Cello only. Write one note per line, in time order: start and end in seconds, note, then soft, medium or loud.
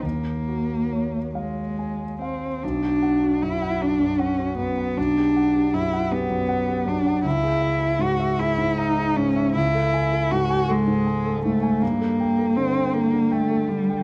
0.03 1.34 A#3 soft
1.35 2.17 G#3 soft
2.21 2.65 C4 soft
2.64 3.44 D4 soft
3.43 3.83 E4 medium
3.81 4.22 D4 soft
4.20 4.58 C#4 soft
4.58 4.99 B3 soft
4.97 5.75 D4 medium
5.74 6.13 E4 medium
6.12 6.89 B3 medium
6.88 7.25 D4 medium
7.25 8.03 E4 medium
8.02 8.41 F#4 medium
8.39 8.80 E4 medium
8.78 9.18 D#4 medium
9.16 9.55 C#4 medium
9.55 10.33 E4 medium
10.31 10.71 F#4 medium
10.70 11.44 G#3 medium
11.45 11.84 A3 medium
11.82 12.58 A#3 medium
12.56 12.95 C4 medium
12.93 13.33 A#3 medium
13.32 13.70 A3 medium
13.69 14.03 G3 soft